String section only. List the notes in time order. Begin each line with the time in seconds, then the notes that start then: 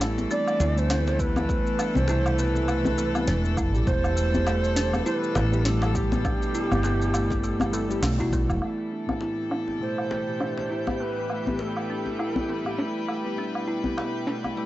Already playing: E3 A3 A4
3.88 B2 G3
8.62 E3 G3 E4 A4
11.00 B4
13.38 B2